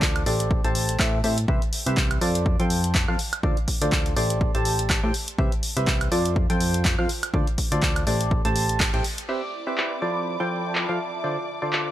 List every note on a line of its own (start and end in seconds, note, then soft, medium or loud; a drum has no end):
0.00 0.24 D2 medium
0.00 0.24 D3 medium
0.00 0.24 F4 medium
0.00 0.24 A4 medium
0.00 0.24 C5 medium
0.00 0.24 D5 medium
0.00 kick loud
0.00 clap loud
0.16 closed hi-hat soft
0.16 high woodblock medium
0.26 0.62 A1 medium
0.26 0.61 A3 medium
0.26 0.61 G4 medium
0.26 0.61 A4 medium
0.26 0.61 C5 medium
0.26 0.61 D5 loud
0.26 open hi-hat medium
0.40 closed hi-hat medium
0.51 kick loud
0.64 0.97 A1 loud
0.64 0.97 A3 medium
0.64 0.97 G4 medium
0.64 0.97 A4 medium
0.64 0.97 C5 medium
0.64 0.97 A5 loud
0.64 closed hi-hat soft
0.75 open hi-hat loud
0.89 closed hi-hat medium
0.99 1.22 A2 medium
0.99 1.19 A3 medium
0.99 1.19 G4 medium
0.99 1.19 A4 medium
0.99 1.19 C5 medium
0.99 1.19 E5 loud
0.99 kick loud
0.99 clap loud
0.99 high woodblock medium
1.24 1.46 A2 medium
1.24 1.37 C4 medium
1.24 1.37 G4 medium
1.24 1.37 A4 medium
1.24 1.37 C5 medium
1.24 1.37 E5 medium
1.24 open hi-hat medium
1.38 closed hi-hat medium
1.48 1.59 C2 medium
1.48 1.61 C4 medium
1.48 1.61 G4 medium
1.48 1.61 B4 medium
1.48 1.61 C5 medium
1.48 1.61 E5 loud
1.48 kick loud
1.62 closed hi-hat soft
1.73 open hi-hat loud
1.86 2.19 C2 medium
1.86 2.19 C4 medium
1.86 2.19 G4 medium
1.86 2.19 B4 medium
1.86 2.19 C5 medium
1.86 2.19 E5 medium
1.86 closed hi-hat medium
1.97 kick loud
1.97 clap loud
2.11 closed hi-hat soft
2.11 high woodblock medium
2.21 2.57 F2 loud
2.21 2.56 F3 medium
2.21 2.56 F4 medium
2.21 2.56 A4 medium
2.21 2.56 C5 medium
2.21 2.56 D5 medium
2.21 open hi-hat medium
2.35 closed hi-hat medium
2.46 kick loud
2.60 3.06 F2 loud
2.60 3.05 F3 medium
2.60 3.05 F4 medium
2.60 3.05 A4 medium
2.60 3.05 C5 medium
2.60 3.05 G5 loud
2.60 closed hi-hat soft
2.70 open hi-hat loud
2.84 closed hi-hat medium
2.95 kick loud
2.95 clap loud
3.08 3.16 F2 medium
3.08 3.18 F3 medium
3.08 3.18 F4 medium
3.08 3.19 A4 medium
3.08 3.18 C5 medium
3.08 3.18 F5 medium
3.08 high woodblock medium
3.19 open hi-hat medium
3.33 closed hi-hat medium
3.33 high woodblock medium
3.43 3.54 D2 medium
3.43 3.56 D3 medium
3.43 3.56 F4 medium
3.43 3.56 A4 medium
3.43 3.56 C5 medium
3.43 3.56 D5 medium
3.43 kick loud
3.57 closed hi-hat soft
3.68 kick medium
3.68 open hi-hat loud
3.82 4.14 D2 medium
3.82 4.14 D3 medium
3.82 4.14 F4 medium
3.82 4.14 A4 medium
3.82 4.14 C5 medium
3.82 4.14 D5 medium
3.82 closed hi-hat medium
3.92 kick loud
3.92 clap loud
4.06 closed hi-hat medium
4.17 4.52 A1 loud
4.17 4.51 A3 medium
4.17 4.51 G4 medium
4.17 4.51 A4 medium
4.17 4.51 C5 medium
4.17 4.51 D5 medium
4.17 open hi-hat medium
4.30 closed hi-hat medium
4.41 kick loud
4.55 5.01 A1 loud
4.55 5.00 A3 loud
4.55 5.00 G4 medium
4.55 5.00 A4 medium
4.55 5.00 C5 medium
4.55 5.00 A5 loud
4.55 closed hi-hat soft
4.65 open hi-hat loud
4.79 closed hi-hat medium
4.90 kick loud
4.90 clap loud
4.90 high woodblock medium
5.03 5.11 A2 medium
5.03 5.14 A3 medium
5.03 5.14 G4 medium
5.03 5.14 A4 medium
5.03 5.14 C5 medium
5.03 5.14 G5 medium
5.14 open hi-hat medium
5.28 closed hi-hat medium
5.38 5.49 C2 loud
5.38 5.52 C4 medium
5.38 5.52 G4 medium
5.38 5.52 B4 medium
5.38 5.52 C5 medium
5.38 5.52 E5 medium
5.38 kick loud
5.52 closed hi-hat soft
5.63 open hi-hat loud
5.77 6.10 C2 medium
5.77 6.09 C4 medium
5.77 6.09 G4 medium
5.77 6.09 B4 medium
5.77 6.09 C5 medium
5.77 6.09 E5 medium
5.77 closed hi-hat medium
5.87 kick loud
5.87 clap loud
6.01 closed hi-hat medium
6.01 high woodblock medium
6.12 6.47 F2 loud
6.12 6.47 F3 medium
6.12 6.47 F4 medium
6.12 6.47 A4 medium
6.12 6.47 C5 medium
6.12 6.47 D5 loud
6.12 open hi-hat medium
6.25 closed hi-hat medium
6.36 kick loud
6.50 6.96 F2 loud
6.50 6.95 F3 medium
6.50 6.95 F4 medium
6.50 6.95 A4 medium
6.50 6.95 C5 medium
6.50 6.95 G5 loud
6.50 closed hi-hat medium
6.61 open hi-hat loud
6.74 closed hi-hat medium
6.85 kick loud
6.85 clap loud
6.99 7.07 F2 loud
6.99 7.09 F3 medium
6.99 7.09 F4 medium
6.99 7.09 A4 medium
6.99 7.09 C5 medium
6.99 7.09 F5 medium
6.99 high woodblock medium
7.09 open hi-hat medium
7.23 closed hi-hat medium
7.23 high woodblock medium
7.34 7.44 D2 medium
7.34 7.47 D3 medium
7.34 7.47 F4 medium
7.34 7.47 A4 medium
7.34 7.47 C5 medium
7.34 7.47 D5 medium
7.34 kick loud
7.47 closed hi-hat soft
7.58 kick medium
7.58 open hi-hat loud
7.72 8.05 D2 medium
7.72 8.04 D3 medium
7.72 8.04 F4 medium
7.72 8.04 A4 medium
7.72 8.04 C5 medium
7.72 8.04 D5 medium
7.72 closed hi-hat medium
7.82 kick loud
7.82 clap loud
7.96 closed hi-hat medium
7.96 high woodblock medium
8.07 8.42 A1 loud
8.07 8.42 A3 medium
8.07 8.42 G4 medium
8.07 8.42 A4 medium
8.07 8.42 C5 medium
8.07 8.42 D5 loud
8.07 open hi-hat medium
8.21 closed hi-hat medium
8.31 kick loud
8.45 8.91 A1 loud
8.45 8.90 A3 loud
8.45 8.90 G4 medium
8.45 8.90 A4 medium
8.45 8.90 C5 medium
8.45 8.90 A5 loud
8.45 closed hi-hat medium
8.56 open hi-hat loud
8.69 closed hi-hat medium
8.80 kick loud
8.80 clap loud
8.80 high woodblock medium
8.94 9.02 A1 loud
8.94 9.04 A3 medium
8.94 9.04 G4 medium
8.94 9.04 A4 medium
8.94 9.04 C5 medium
8.94 9.04 G5 medium
8.94 closed hi-hat soft
9.04 open hi-hat medium
9.18 closed hi-hat medium
9.29 9.42 C4 medium
9.29 10.02 E4 medium
9.29 9.42 G4 medium
9.29 9.42 B4 medium
9.29 9.42 C5 medium
9.29 11.91 D5 medium
9.29 9.42 E5 medium
9.29 11.91 D6 medium
9.29 crash medium
9.63 10.51 C4 medium
9.63 10.51 B5 medium
9.67 9.99 C4 medium
9.67 9.99 G4 medium
9.67 9.99 B4 medium
9.67 9.99 C5 medium
9.67 9.99 E5 medium
9.78 clap loud
10.02 10.37 F3 medium
10.02 10.37 F4 medium
10.02 11.91 F4 medium
10.02 10.37 A4 medium
10.02 10.37 C5 medium
10.02 10.37 D5 medium
10.21 11.54 A5 medium
10.40 10.86 F3 medium
10.40 10.86 F4 medium
10.40 10.86 A4 medium
10.40 10.86 C5 medium
10.40 10.86 G5 loud
10.46 11.54 E5 medium
10.75 clap loud
10.89 10.99 F3 medium
10.89 10.99 F4 medium
10.89 10.99 A4 medium
10.89 10.99 C5 medium
10.89 10.99 F5 medium
11.24 11.37 D3 medium
11.24 11.37 F4 medium
11.24 11.37 A4 medium
11.24 11.37 C5 medium
11.24 11.37 D5 medium
11.51 11.91 D5 medium
11.62 11.91 D3 medium
11.62 11.91 F4 medium
11.62 11.91 A4 medium
11.62 11.91 C5 medium
11.62 11.91 D5 medium
11.73 clap loud